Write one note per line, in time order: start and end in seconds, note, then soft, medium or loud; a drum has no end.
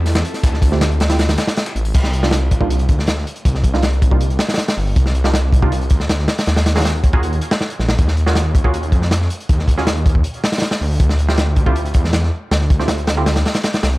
0.00 0.23 E2 medium
0.00 1.91 C4 medium
0.00 1.91 E4 medium
0.00 1.90 F4 medium
0.00 1.92 A4 medium
0.06 snare soft
0.06 open hi-hat medium
0.15 snare medium
0.15 snare loud
0.15 closed hi-hat medium
0.25 closed hi-hat medium
0.34 snare soft
0.34 open hi-hat medium
0.43 1.36 D2 loud
0.43 kick loud
0.43 snare loud
0.43 closed hi-hat medium
0.43 closed hi-hat loud
0.54 snare soft
0.62 kick loud
0.62 closed hi-hat medium
0.62 open hi-hat medium
0.72 0.82 A3 medium
0.72 0.82 C4 medium
0.72 0.82 E4 medium
0.72 0.82 F4 medium
0.72 0.82 G4 medium
0.72 snare soft
0.81 snare loud
0.81 closed hi-hat medium
0.91 closed hi-hat soft
1.00 snare loud
1.00 closed hi-hat medium
1.10 1.20 A3 medium
1.10 1.20 C4 medium
1.10 1.20 E4 medium
1.10 1.20 F4 medium
1.10 1.20 G4 medium
1.10 snare loud
1.10 closed hi-hat medium
1.10 closed hi-hat soft
1.19 snare loud
1.19 closed hi-hat medium
1.29 snare loud
1.29 closed hi-hat soft
1.29 closed hi-hat medium
1.38 snare loud
1.38 closed hi-hat medium
1.47 snare loud
1.47 closed hi-hat medium
1.56 snare loud
1.56 closed hi-hat medium
1.56 open hi-hat medium
1.66 snare loud
1.66 closed hi-hat medium
1.75 1.93 A1 medium
1.75 closed hi-hat medium
1.85 open hi-hat medium
1.94 2.87 C2 loud
1.94 kick loud
1.94 closed hi-hat medium
1.94 crash medium
2.04 snare medium
2.13 closed hi-hat medium
2.23 2.33 G3 medium
2.23 2.33 A#3 medium
2.23 2.33 D4 medium
2.23 2.33 D#4 medium
2.23 2.33 F4 medium
2.23 snare medium
2.31 snare loud
2.31 closed hi-hat medium
2.51 kick loud
2.51 closed hi-hat medium
2.60 2.71 G3 medium
2.60 2.71 A#3 medium
2.60 2.71 D4 medium
2.60 2.71 D#4 medium
2.60 2.71 F4 medium
2.60 kick loud
2.70 closed hi-hat medium
2.79 closed hi-hat soft
2.89 3.25 D2 medium
2.89 kick loud
2.89 closed hi-hat medium
2.99 snare medium
3.07 snare loud
3.07 closed hi-hat medium
3.17 snare soft
3.27 closed hi-hat medium
3.36 closed hi-hat soft
3.45 4.38 C2 loud
3.45 kick loud
3.45 closed hi-hat medium
3.55 snare soft
3.64 kick medium
3.64 closed hi-hat medium
3.74 3.84 G3 medium
3.74 3.84 A#3 medium
3.74 3.84 D4 medium
3.74 3.84 D#4 medium
3.74 3.84 F4 medium
3.74 snare soft
3.82 snare loud
3.82 closed hi-hat medium
3.93 closed hi-hat soft
4.02 kick loud
4.02 closed hi-hat medium
4.11 4.22 G3 medium
4.11 4.22 A#3 medium
4.11 4.22 D4 medium
4.11 4.22 D#4 medium
4.11 4.22 F4 medium
4.11 kick loud
4.21 closed hi-hat medium
4.30 closed hi-hat soft
4.39 snare loud
4.39 closed hi-hat medium
4.48 snare medium
4.48 closed hi-hat medium
4.54 snare medium
4.54 closed hi-hat medium
4.58 snare loud
4.58 closed hi-hat medium
4.68 snare loud
4.68 closed hi-hat medium
4.77 4.94 G1 loud
4.77 open hi-hat medium
4.96 5.89 C2 loud
4.96 kick loud
4.96 closed hi-hat medium
5.06 snare medium
5.15 closed hi-hat medium
5.24 5.35 G3 medium
5.24 5.35 A#3 medium
5.24 5.35 D4 medium
5.24 5.35 D#4 medium
5.24 5.35 F4 medium
5.24 snare medium
5.34 snare loud
5.34 closed hi-hat medium
5.53 kick medium
5.53 closed hi-hat medium
5.62 5.73 G3 medium
5.62 5.73 A#3 medium
5.62 5.73 D4 medium
5.62 5.73 D#4 medium
5.62 5.73 F4 medium
5.62 kick loud
5.72 closed hi-hat medium
5.81 closed hi-hat soft
5.90 6.27 D2 medium
5.90 kick medium
5.90 closed hi-hat medium
6.00 snare soft
6.09 snare loud
6.09 closed hi-hat medium
6.19 snare soft
6.28 snare loud
6.28 closed hi-hat medium
6.38 snare loud
6.38 closed hi-hat medium
6.46 7.40 D#2 loud
6.46 snare loud
6.46 closed hi-hat medium
6.56 snare loud
6.56 closed hi-hat medium
6.66 snare loud
6.66 closed hi-hat medium
6.75 6.86 A#3 medium
6.75 6.86 C#4 medium
6.75 6.86 F4 medium
6.75 6.86 F#4 medium
6.75 6.86 G#4 medium
6.75 snare medium
6.75 closed hi-hat medium
6.80 snare medium
6.80 closed hi-hat medium
6.85 snare loud
6.85 closed hi-hat medium
6.95 closed hi-hat soft
7.04 kick loud
7.04 closed hi-hat medium
7.13 7.24 A#3 medium
7.13 7.24 C#4 medium
7.13 7.24 F4 medium
7.13 7.24 F#4 medium
7.13 7.24 G#4 medium
7.13 kick loud
7.23 closed hi-hat medium
7.33 closed hi-hat soft
7.41 closed hi-hat medium
7.51 snare loud
7.61 snare loud
7.70 closed hi-hat medium
7.79 7.96 A#1 medium
7.79 snare soft
7.89 snare loud
7.98 8.91 D#2 loud
7.98 kick loud
7.98 closed hi-hat medium
8.08 snare medium
8.17 closed hi-hat medium
8.26 8.37 A#3 medium
8.26 8.37 C#4 medium
8.26 8.37 F4 medium
8.26 8.37 F#4 medium
8.26 8.37 G#4 medium
8.26 snare medium
8.35 snare loud
8.35 closed hi-hat medium
8.55 kick loud
8.55 closed hi-hat medium
8.64 8.75 A#3 medium
8.64 8.75 C#4 medium
8.64 8.75 F4 medium
8.64 8.75 F#4 medium
8.64 8.75 G#4 medium
8.64 kick loud
8.74 closed hi-hat medium
8.83 closed hi-hat soft
8.92 9.29 F2 medium
8.92 kick medium
8.92 closed hi-hat medium
9.02 snare medium
9.11 snare loud
9.11 closed hi-hat medium
9.22 snare soft
9.30 closed hi-hat medium
9.40 closed hi-hat soft
9.49 10.23 D#2 loud
9.49 kick loud
9.49 closed hi-hat medium
9.59 snare soft
9.68 kick medium
9.68 closed hi-hat medium
9.77 9.88 A#3 medium
9.77 9.88 C#4 medium
9.77 9.88 F4 medium
9.77 9.88 F#4 medium
9.77 9.88 G#4 medium
9.77 snare soft
9.87 snare loud
9.87 closed hi-hat medium
9.96 closed hi-hat soft
10.06 kick loud
10.06 closed hi-hat medium
10.15 kick loud
10.24 closed hi-hat medium
10.34 closed hi-hat soft
10.44 snare loud
10.44 closed hi-hat medium
10.52 snare medium
10.52 closed hi-hat medium
10.57 snare medium
10.57 closed hi-hat medium
10.62 snare loud
10.62 closed hi-hat medium
10.71 snare loud
10.71 closed hi-hat medium
10.81 10.98 D2 medium
10.81 open hi-hat medium
11.00 11.93 D2 loud
11.00 kick loud
11.00 closed hi-hat medium
11.09 snare medium
11.19 closed hi-hat medium
11.28 11.39 A3 medium
11.28 11.39 C4 medium
11.28 11.39 E4 medium
11.28 11.39 F4 medium
11.28 11.39 G4 medium
11.28 snare medium
11.38 snare loud
11.38 closed hi-hat loud
11.56 kick medium
11.56 closed hi-hat medium
11.66 11.77 A3 medium
11.66 11.77 C4 medium
11.66 11.77 E4 medium
11.66 11.77 F4 medium
11.66 11.77 G4 medium
11.66 kick loud
11.76 closed hi-hat medium
11.85 closed hi-hat medium
11.94 12.31 E2 medium
11.94 kick medium
11.94 closed hi-hat medium
12.04 snare medium
12.13 snare loud
12.13 closed hi-hat medium
12.23 snare soft
12.51 13.44 D2 loud
12.51 snare medium
12.51 closed hi-hat medium
12.61 snare soft
12.70 kick loud
12.70 closed hi-hat medium
12.79 12.90 A3 medium
12.79 12.90 C4 medium
12.79 12.90 E4 medium
12.79 12.90 F4 medium
12.79 12.90 G4 medium
12.79 snare soft
12.88 snare loud
12.88 closed hi-hat loud
12.98 closed hi-hat soft
13.07 snare loud
13.07 closed hi-hat medium
13.17 13.28 A3 medium
13.17 13.28 C4 medium
13.17 13.28 E4 medium
13.17 13.28 F4 medium
13.17 13.28 G4 medium
13.26 snare loud
13.26 closed hi-hat medium
13.36 snare loud
13.36 closed hi-hat medium
13.46 snare loud
13.46 closed hi-hat medium
13.54 snare loud
13.54 closed hi-hat medium
13.63 snare loud
13.63 closed hi-hat medium
13.73 snare loud
13.73 closed hi-hat medium
13.83 13.98 C2 medium
13.83 snare loud
13.83 closed hi-hat medium
13.93 closed hi-hat soft